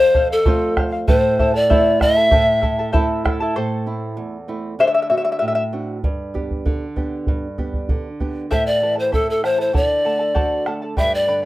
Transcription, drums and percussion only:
0, 0, Header, 1, 2, 480
1, 0, Start_track
1, 0, Key_signature, 0, "minor"
1, 0, Tempo, 618557
1, 838, Time_signature, 2, 2, 24, 8
1, 8887, End_track
2, 0, Start_track
2, 0, Title_t, "Bombo"
2, 115, Note_on_c, 9, 43, 55
2, 193, Note_off_c, 9, 43, 0
2, 355, Note_on_c, 9, 43, 71
2, 433, Note_off_c, 9, 43, 0
2, 597, Note_on_c, 9, 37, 50
2, 597, Note_on_c, 9, 43, 55
2, 675, Note_off_c, 9, 37, 0
2, 675, Note_off_c, 9, 43, 0
2, 838, Note_on_c, 9, 43, 76
2, 915, Note_off_c, 9, 43, 0
2, 1082, Note_on_c, 9, 43, 58
2, 1160, Note_off_c, 9, 43, 0
2, 1326, Note_on_c, 9, 43, 67
2, 1403, Note_off_c, 9, 43, 0
2, 1560, Note_on_c, 9, 37, 46
2, 1560, Note_on_c, 9, 43, 54
2, 1638, Note_off_c, 9, 37, 0
2, 1638, Note_off_c, 9, 43, 0
2, 1797, Note_on_c, 9, 43, 71
2, 1875, Note_off_c, 9, 43, 0
2, 2039, Note_on_c, 9, 43, 53
2, 2117, Note_off_c, 9, 43, 0
2, 2282, Note_on_c, 9, 43, 67
2, 2360, Note_off_c, 9, 43, 0
2, 2526, Note_on_c, 9, 37, 52
2, 2526, Note_on_c, 9, 43, 56
2, 2604, Note_off_c, 9, 37, 0
2, 2604, Note_off_c, 9, 43, 0
2, 4685, Note_on_c, 9, 43, 59
2, 4763, Note_off_c, 9, 43, 0
2, 4935, Note_on_c, 9, 43, 42
2, 5012, Note_off_c, 9, 43, 0
2, 5050, Note_on_c, 9, 43, 44
2, 5127, Note_off_c, 9, 43, 0
2, 5167, Note_on_c, 9, 43, 62
2, 5245, Note_off_c, 9, 43, 0
2, 5407, Note_on_c, 9, 43, 48
2, 5485, Note_off_c, 9, 43, 0
2, 5641, Note_on_c, 9, 43, 60
2, 5719, Note_off_c, 9, 43, 0
2, 5884, Note_on_c, 9, 43, 44
2, 5962, Note_off_c, 9, 43, 0
2, 6003, Note_on_c, 9, 43, 45
2, 6080, Note_off_c, 9, 43, 0
2, 6122, Note_on_c, 9, 43, 62
2, 6200, Note_off_c, 9, 43, 0
2, 6366, Note_on_c, 9, 43, 45
2, 6444, Note_off_c, 9, 43, 0
2, 6610, Note_on_c, 9, 43, 52
2, 6688, Note_off_c, 9, 43, 0
2, 7088, Note_on_c, 9, 43, 55
2, 7166, Note_off_c, 9, 43, 0
2, 7325, Note_on_c, 9, 37, 45
2, 7402, Note_off_c, 9, 37, 0
2, 7563, Note_on_c, 9, 43, 68
2, 7641, Note_off_c, 9, 43, 0
2, 8038, Note_on_c, 9, 43, 61
2, 8116, Note_off_c, 9, 43, 0
2, 8274, Note_on_c, 9, 37, 43
2, 8352, Note_off_c, 9, 37, 0
2, 8513, Note_on_c, 9, 43, 59
2, 8590, Note_off_c, 9, 43, 0
2, 8887, End_track
0, 0, End_of_file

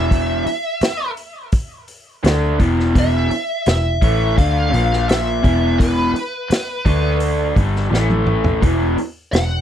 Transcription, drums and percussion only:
0, 0, Header, 1, 2, 480
1, 0, Start_track
1, 0, Key_signature, 1, "minor"
1, 0, Tempo, 709220
1, 76, Time_signature, 4, 2, 24, 8
1, 6505, End_track
2, 0, Start_track
2, 0, Title_t, "Drums"
2, 76, Note_on_c, 9, 36, 89
2, 79, Note_on_c, 9, 46, 62
2, 144, Note_off_c, 9, 36, 0
2, 146, Note_off_c, 9, 46, 0
2, 316, Note_on_c, 9, 46, 50
2, 383, Note_off_c, 9, 46, 0
2, 550, Note_on_c, 9, 46, 64
2, 562, Note_on_c, 9, 38, 97
2, 617, Note_off_c, 9, 46, 0
2, 629, Note_off_c, 9, 38, 0
2, 792, Note_on_c, 9, 46, 52
2, 860, Note_off_c, 9, 46, 0
2, 1030, Note_on_c, 9, 46, 64
2, 1034, Note_on_c, 9, 36, 96
2, 1098, Note_off_c, 9, 46, 0
2, 1101, Note_off_c, 9, 36, 0
2, 1271, Note_on_c, 9, 46, 51
2, 1339, Note_off_c, 9, 46, 0
2, 1518, Note_on_c, 9, 46, 61
2, 1530, Note_on_c, 9, 38, 105
2, 1586, Note_off_c, 9, 46, 0
2, 1598, Note_off_c, 9, 38, 0
2, 1757, Note_on_c, 9, 46, 48
2, 1758, Note_on_c, 9, 36, 96
2, 1825, Note_off_c, 9, 46, 0
2, 1826, Note_off_c, 9, 36, 0
2, 1892, Note_on_c, 9, 38, 32
2, 1960, Note_off_c, 9, 38, 0
2, 1999, Note_on_c, 9, 36, 93
2, 2001, Note_on_c, 9, 46, 58
2, 2067, Note_off_c, 9, 36, 0
2, 2068, Note_off_c, 9, 46, 0
2, 2240, Note_on_c, 9, 46, 46
2, 2308, Note_off_c, 9, 46, 0
2, 2477, Note_on_c, 9, 46, 61
2, 2490, Note_on_c, 9, 38, 96
2, 2545, Note_off_c, 9, 46, 0
2, 2557, Note_off_c, 9, 38, 0
2, 2721, Note_on_c, 9, 36, 106
2, 2723, Note_on_c, 9, 46, 48
2, 2789, Note_off_c, 9, 36, 0
2, 2790, Note_off_c, 9, 46, 0
2, 2964, Note_on_c, 9, 36, 91
2, 2967, Note_on_c, 9, 46, 63
2, 3031, Note_off_c, 9, 36, 0
2, 3035, Note_off_c, 9, 46, 0
2, 3207, Note_on_c, 9, 46, 51
2, 3275, Note_off_c, 9, 46, 0
2, 3336, Note_on_c, 9, 38, 31
2, 3404, Note_off_c, 9, 38, 0
2, 3445, Note_on_c, 9, 46, 61
2, 3457, Note_on_c, 9, 38, 95
2, 3513, Note_off_c, 9, 46, 0
2, 3525, Note_off_c, 9, 38, 0
2, 3684, Note_on_c, 9, 36, 100
2, 3686, Note_on_c, 9, 46, 47
2, 3752, Note_off_c, 9, 36, 0
2, 3754, Note_off_c, 9, 46, 0
2, 3925, Note_on_c, 9, 36, 97
2, 3929, Note_on_c, 9, 46, 63
2, 3993, Note_off_c, 9, 36, 0
2, 3997, Note_off_c, 9, 46, 0
2, 4169, Note_on_c, 9, 46, 47
2, 4237, Note_off_c, 9, 46, 0
2, 4404, Note_on_c, 9, 46, 64
2, 4416, Note_on_c, 9, 38, 98
2, 4471, Note_off_c, 9, 46, 0
2, 4484, Note_off_c, 9, 38, 0
2, 4640, Note_on_c, 9, 36, 103
2, 4642, Note_on_c, 9, 46, 51
2, 4708, Note_off_c, 9, 36, 0
2, 4710, Note_off_c, 9, 46, 0
2, 4875, Note_on_c, 9, 46, 64
2, 4942, Note_off_c, 9, 46, 0
2, 5120, Note_on_c, 9, 36, 100
2, 5120, Note_on_c, 9, 46, 50
2, 5187, Note_off_c, 9, 36, 0
2, 5188, Note_off_c, 9, 46, 0
2, 5251, Note_on_c, 9, 38, 28
2, 5319, Note_off_c, 9, 38, 0
2, 5372, Note_on_c, 9, 38, 55
2, 5440, Note_off_c, 9, 38, 0
2, 5481, Note_on_c, 9, 48, 52
2, 5548, Note_off_c, 9, 48, 0
2, 5594, Note_on_c, 9, 45, 76
2, 5662, Note_off_c, 9, 45, 0
2, 5715, Note_on_c, 9, 43, 85
2, 5782, Note_off_c, 9, 43, 0
2, 5837, Note_on_c, 9, 36, 92
2, 5841, Note_on_c, 9, 46, 55
2, 5905, Note_off_c, 9, 36, 0
2, 5909, Note_off_c, 9, 46, 0
2, 6078, Note_on_c, 9, 46, 47
2, 6145, Note_off_c, 9, 46, 0
2, 6316, Note_on_c, 9, 46, 55
2, 6328, Note_on_c, 9, 38, 102
2, 6384, Note_off_c, 9, 46, 0
2, 6396, Note_off_c, 9, 38, 0
2, 6505, End_track
0, 0, End_of_file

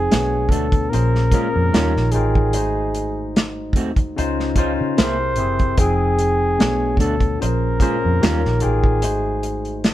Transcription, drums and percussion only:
0, 0, Header, 1, 2, 480
1, 0, Start_track
1, 0, Tempo, 810811
1, 1500, Time_signature, 4, 2, 24, 8
1, 5884, End_track
2, 0, Start_track
2, 0, Title_t, "Drums"
2, 68, Note_on_c, 9, 42, 68
2, 71, Note_on_c, 9, 38, 92
2, 127, Note_off_c, 9, 42, 0
2, 130, Note_off_c, 9, 38, 0
2, 289, Note_on_c, 9, 36, 75
2, 307, Note_on_c, 9, 42, 58
2, 348, Note_off_c, 9, 36, 0
2, 366, Note_off_c, 9, 42, 0
2, 427, Note_on_c, 9, 36, 83
2, 429, Note_on_c, 9, 42, 35
2, 487, Note_off_c, 9, 36, 0
2, 488, Note_off_c, 9, 42, 0
2, 552, Note_on_c, 9, 42, 64
2, 611, Note_off_c, 9, 42, 0
2, 682, Note_on_c, 9, 38, 29
2, 741, Note_off_c, 9, 38, 0
2, 779, Note_on_c, 9, 36, 82
2, 781, Note_on_c, 9, 42, 67
2, 838, Note_off_c, 9, 36, 0
2, 840, Note_off_c, 9, 42, 0
2, 1031, Note_on_c, 9, 42, 77
2, 1033, Note_on_c, 9, 38, 95
2, 1090, Note_off_c, 9, 42, 0
2, 1092, Note_off_c, 9, 38, 0
2, 1164, Note_on_c, 9, 38, 33
2, 1223, Note_off_c, 9, 38, 0
2, 1253, Note_on_c, 9, 42, 59
2, 1312, Note_off_c, 9, 42, 0
2, 1394, Note_on_c, 9, 36, 78
2, 1453, Note_off_c, 9, 36, 0
2, 1499, Note_on_c, 9, 42, 78
2, 1558, Note_off_c, 9, 42, 0
2, 1743, Note_on_c, 9, 42, 56
2, 1803, Note_off_c, 9, 42, 0
2, 1991, Note_on_c, 9, 42, 70
2, 1993, Note_on_c, 9, 38, 94
2, 2050, Note_off_c, 9, 42, 0
2, 2053, Note_off_c, 9, 38, 0
2, 2209, Note_on_c, 9, 36, 76
2, 2225, Note_on_c, 9, 42, 61
2, 2268, Note_off_c, 9, 36, 0
2, 2285, Note_off_c, 9, 42, 0
2, 2347, Note_on_c, 9, 36, 86
2, 2348, Note_on_c, 9, 42, 33
2, 2406, Note_off_c, 9, 36, 0
2, 2407, Note_off_c, 9, 42, 0
2, 2475, Note_on_c, 9, 42, 65
2, 2534, Note_off_c, 9, 42, 0
2, 2603, Note_on_c, 9, 38, 29
2, 2662, Note_off_c, 9, 38, 0
2, 2697, Note_on_c, 9, 36, 83
2, 2698, Note_on_c, 9, 42, 64
2, 2757, Note_off_c, 9, 36, 0
2, 2757, Note_off_c, 9, 42, 0
2, 2948, Note_on_c, 9, 42, 72
2, 2951, Note_on_c, 9, 38, 92
2, 3008, Note_off_c, 9, 42, 0
2, 3010, Note_off_c, 9, 38, 0
2, 3171, Note_on_c, 9, 42, 58
2, 3230, Note_off_c, 9, 42, 0
2, 3310, Note_on_c, 9, 42, 30
2, 3313, Note_on_c, 9, 36, 78
2, 3370, Note_off_c, 9, 42, 0
2, 3373, Note_off_c, 9, 36, 0
2, 3419, Note_on_c, 9, 42, 80
2, 3420, Note_on_c, 9, 36, 99
2, 3478, Note_off_c, 9, 42, 0
2, 3479, Note_off_c, 9, 36, 0
2, 3662, Note_on_c, 9, 42, 55
2, 3721, Note_off_c, 9, 42, 0
2, 3908, Note_on_c, 9, 42, 65
2, 3911, Note_on_c, 9, 38, 96
2, 3968, Note_off_c, 9, 42, 0
2, 3970, Note_off_c, 9, 38, 0
2, 4127, Note_on_c, 9, 36, 73
2, 4145, Note_on_c, 9, 42, 59
2, 4186, Note_off_c, 9, 36, 0
2, 4204, Note_off_c, 9, 42, 0
2, 4265, Note_on_c, 9, 36, 85
2, 4266, Note_on_c, 9, 42, 32
2, 4324, Note_off_c, 9, 36, 0
2, 4325, Note_off_c, 9, 42, 0
2, 4392, Note_on_c, 9, 42, 69
2, 4452, Note_off_c, 9, 42, 0
2, 4617, Note_on_c, 9, 36, 87
2, 4621, Note_on_c, 9, 42, 62
2, 4676, Note_off_c, 9, 36, 0
2, 4680, Note_off_c, 9, 42, 0
2, 4872, Note_on_c, 9, 42, 81
2, 4874, Note_on_c, 9, 38, 101
2, 4931, Note_off_c, 9, 42, 0
2, 4933, Note_off_c, 9, 38, 0
2, 5003, Note_on_c, 9, 38, 32
2, 5062, Note_off_c, 9, 38, 0
2, 5094, Note_on_c, 9, 42, 63
2, 5153, Note_off_c, 9, 42, 0
2, 5231, Note_on_c, 9, 36, 73
2, 5290, Note_off_c, 9, 36, 0
2, 5341, Note_on_c, 9, 42, 81
2, 5400, Note_off_c, 9, 42, 0
2, 5584, Note_on_c, 9, 42, 55
2, 5643, Note_off_c, 9, 42, 0
2, 5712, Note_on_c, 9, 42, 29
2, 5772, Note_off_c, 9, 42, 0
2, 5826, Note_on_c, 9, 42, 66
2, 5828, Note_on_c, 9, 38, 91
2, 5884, Note_off_c, 9, 38, 0
2, 5884, Note_off_c, 9, 42, 0
2, 5884, End_track
0, 0, End_of_file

